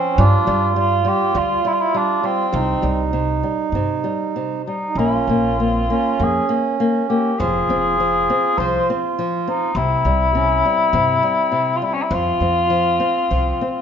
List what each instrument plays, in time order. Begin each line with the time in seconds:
Already playing: nylon-string guitar F3, cor anglais C4, accordion C#4
0.18 upright bass G2, nylon-string guitar G3, cor anglais D4, accordion F4
0.47 upright bass G2, nylon-string guitar G3
0.76 nylon-string guitar G3, cor anglais F4
1.05 nylon-string guitar G3, cor anglais G4
1.35 upright bass D2, nylon-string guitar G3, cor anglais F4
1.65 nylon-string guitar G3, cor anglais E4
1.73 cor anglais F4
1.81 cor anglais E4
1.94 nylon-string guitar G3, cor anglais D4
2.23 nylon-string guitar G3, cor anglais C4
2.52 upright bass C2, nylon-string guitar C3, accordion D#4
2.82 upright bass C2, nylon-string guitar G3
3.13 nylon-string guitar C3
3.43 nylon-string guitar G3
3.72 upright bass G2, nylon-string guitar C3
4.04 nylon-string guitar G3
4.36 nylon-string guitar C3
4.67 nylon-string guitar G3, cor anglais D#4
4.89 accordion D#4
4.95 upright bass A#1, nylon-string guitar A#3, accordion C#4, cor anglais F4
5.27 upright bass A#1, nylon-string guitar A#3
5.58 nylon-string guitar A#3, accordion C4
5.89 nylon-string guitar A#3, accordion C#4
6.20 upright bass F2, nylon-string guitar A#3, cor anglais G#4
6.49 nylon-string guitar A#3
6.80 nylon-string guitar A#3
7.09 nylon-string guitar A#3, cor anglais G4
7.39 upright bass F1, nylon-string guitar F3, accordion F4, cor anglais G#4
7.69 upright bass F1, nylon-string guitar C4
8.00 nylon-string guitar F3
8.30 nylon-string guitar C4
8.58 upright bass C2, nylon-string guitar F3, cor anglais C5
8.90 nylon-string guitar C4
9.19 nylon-string guitar F3
9.48 nylon-string guitar C4, cor anglais D#4
9.75 upright bass C2, nylon-string guitar C3, accordion C4, cor anglais E4
10.05 upright bass C2, nylon-string guitar G3
10.35 nylon-string guitar C3, accordion C#4
10.64 nylon-string guitar G3, accordion C4
10.93 upright bass G2, nylon-string guitar C3
11.23 nylon-string guitar G3
11.52 nylon-string guitar C3
11.76 cor anglais F4
11.82 nylon-string guitar G3, cor anglais E4
11.94 cor anglais C#4
12.02 cor anglais E4
12.10 upright bass F2, nylon-string guitar F3, accordion C4, cor anglais F4
12.40 upright bass F2, nylon-string guitar C4
12.69 nylon-string guitar F3, accordion C4
13.00 nylon-string guitar C4
13.30 upright bass C2, nylon-string guitar F3
13.61 nylon-string guitar C4